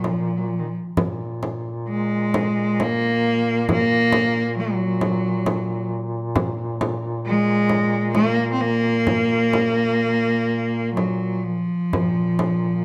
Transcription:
Already playing: duduk A#2
0.04 cello F3, frame drum
0.37 cello F#3
0.48 cello F3
0.59 cello D#3
0.68 cello F3
0.96 duduk A#2, frame drum
1.43 frame drum
1.88 cello G#3
2.34 frame drum
2.80 cello A#3, frame drum
3.69 cello A#3, frame drum
4.12 frame drum
4.60 cello F#3
5.01 frame drum
5.46 frame drum
6.36 frame drum
6.81 frame drum
7.26 cello G#3
7.69 frame drum
8.15 cello A#3, frame drum
8.53 cello C4
8.61 cello A#3
9.07 frame drum
9.53 frame drum
10.95 cello F#3, frame drum
11.44 cello F3
11.90 duduk A#2, frame drum
12.39 frame drum

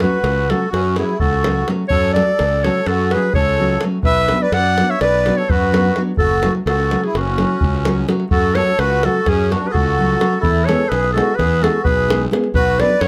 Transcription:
0.00 nylon-string guitar F#3 A3 C#4 F#4, accordion F#4, clarinet B4, davul high
0.23 fingered electric bass C#2, davul high
0.50 nylon-string guitar F#3 A3 C#4 F#4, accordion F#4, clarinet A4, davul high
0.72 fingered electric bass F#2, accordion C#4, clarinet F#4, davul high
0.85 davul high
0.96 nylon-string guitar F#3 A3 C#4 F#4, accordion E4, clarinet G#4, davul high
1.09 davul high
1.19 fingered electric bass C#2, accordion F#4, clarinet A4, davul low
1.33 davul high
1.44 nylon-string guitar F#3 A3 C#4 F#4, davul high
1.68 nylon-string guitar F#3 A3 C#4 F#4, davul high
1.89 fingered electric bass F#2, accordion A4, clarinet C#5, davul low
2.14 nylon-string guitar F#3 A3 C#4 F#4, accordion A4, clarinet D5, davul high
2.39 fingered electric bass C#2, davul high
2.64 nylon-string guitar F#3 A3 C#4 F#4, accordion A4, clarinet C#5, davul high
2.86 fingered electric bass F#2, accordion F#4, clarinet A4, davul high
2.98 davul high
3.11 nylon-string guitar F#3 A3, accordion G#4, clarinet B4, davul high
3.15 nylon-string guitar C#4 F#4
3.23 davul high
3.34 fingered electric bass C#2, accordion A4, clarinet C#5, davul low
3.46 davul high
3.60 nylon-string guitar F#3 A3 C#4 F#4
3.81 nylon-string guitar F#3 A3 C#4 F#4, davul high
4.03 fingered electric bass B1, accordion B4, clarinet E5, davul low
4.29 nylon-string guitar F#3 B3 D4 F#4, davul high
4.42 accordion B4, clarinet D5
4.52 fingered electric bass F#2, accordion D5, clarinet F#5, davul high
4.78 nylon-string guitar F#3 B3 D4 F#4, davul high
4.89 accordion C#5, clarinet E5
5.01 fingered electric bass B1, accordion B4, clarinet D5, davul high
5.13 davul high
5.25 nylon-string guitar F#3 B3 D4 F#4, davul high
5.37 accordion A4, clarinet C#5, davul high
5.50 fingered electric bass F#2, accordion F#4, clarinet B4, davul low
5.63 davul high
5.72 nylon-string guitar F#3 B3 D4 F#4, davul high
5.96 nylon-string guitar F#3 B3 D4 F#4, davul high
6.17 fingered electric bass F#1, accordion F#4, clarinet A4, davul low
6.31 davul high
6.43 nylon-string guitar F#3 A3 C#4 F#4, davul high
6.55 davul high
6.66 fingered electric bass C#2, accordion F#4, clarinet A4, davul high
6.80 davul high
6.91 nylon-string guitar F#3 A3 C#4 F#4, davul high
7.04 accordion E4, clarinet G#4, davul high
7.15 fingered electric bass F#1, accordion C#4, clarinet F#4, davul high
7.27 davul high
7.38 nylon-string guitar F#3 A3 C#4 F#4, davul high
7.61 fingered electric bass C#2, davul low
7.74 davul high
7.85 nylon-string guitar F#3 A3 C#4 F#4, davul high
8.08 nylon-string guitar F#3 A3 C#4 F#4, davul high
8.20 davul high
8.31 fingered electric bass F#2, accordion F#4, clarinet A4, davul low
8.55 nylon-string guitar F#3 A3 C#4 F#4, accordion A4, clarinet C#5, davul high
8.67 davul high
8.79 fingered electric bass C#2, accordion F#4, clarinet B4, davul high
8.90 davul high
9.03 nylon-string guitar F#3 A3 C#4 F#4, accordion F#4, clarinet A4, davul high
9.26 fingered electric bass F#2, accordion C#4, clarinet G#4, davul high, davul low
9.51 nylon-string guitar F#3 A3 C#4 F#4, accordion D4, clarinet F#4, davul high
9.67 accordion G#4, clarinet B4
9.72 fingered electric bass C#2, accordion F#4, clarinet A4, davul low
9.98 nylon-string guitar F#3 A3 C#4 F#4
10.10 davul high
10.20 nylon-string guitar F#3 A3 C#4 F#4, davul high
10.33 davul high
10.41 fingered electric bass E2, accordion E4, clarinet A4, davul low
10.65 nylon-string guitar G#3 B3 E4, accordion A4, clarinet C#5, davul high
10.70 nylon-string guitar G#4
10.81 davul high
10.88 fingered electric bass B1, accordion G#4, clarinet B4, davul high
11.04 davul high
11.13 nylon-string guitar G#3 B3 E4 G#4, accordion F#4, clarinet A4
11.18 davul high
11.35 fingered electric bass E2, accordion G#4, clarinet B4
11.39 davul high, davul low
11.61 nylon-string guitar G#3 B3 E4 G#4, accordion F#4, clarinet A4, davul high
11.83 fingered electric bass B1, accordion G#4, clarinet B4, davul low
12.08 nylon-string guitar G#3 B3 E4 G#4, davul high
12.22 davul high
12.31 nylon-string guitar G#3 B3 E4 G#4, davul high
12.44 davul high
12.54 fingered electric bass B1, accordion F#4, clarinet B4, davul low
12.79 nylon-string guitar F#3 B3 D4 F#4, accordion B4, clarinet D5, davul high
12.90 davul high
13.01 fingered electric bass F#2, accordion F#4, clarinet C#5, davul high

